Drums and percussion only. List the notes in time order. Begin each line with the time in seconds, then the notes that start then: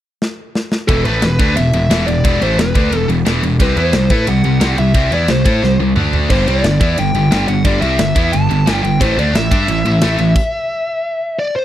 0.22 snare
0.55 snare
0.72 snare
0.89 kick, ride
1.05 ride
1.22 snare, ride
1.39 kick, ride
1.57 ride
1.73 ride
1.91 snare, ride
2.08 ride
2.25 kick, ride
2.42 ride
2.59 snare, ride
2.75 kick, ride
2.92 ride
3.09 ride
3.26 snare, ride
3.43 ride
3.60 kick, ride
3.77 ride
3.93 snare, ride
4.10 kick, ride
4.27 ride
4.44 ride
4.61 snare, ride
4.78 ride
4.94 kick, ride
5.12 ride
5.28 snare, ride
5.46 kick, ride
5.63 snare
5.96 mid tom
6.13 floor tom
6.30 kick, crash
6.48 ride
6.64 snare, ride
6.81 kick, ride
6.98 ride
7.15 ride
7.32 snare, ride
7.48 ride
7.65 kick, ride
7.82 ride
7.99 snare, ride
8.16 kick, ride
8.33 ride
8.51 ride
8.67 snare, ride
8.85 ride
9.01 kick, ride
9.19 ride
9.35 snare, ride
9.52 kick, ride
9.68 ride
9.86 ride
10.01 snare, ride
10.19 ride
10.36 kick, crash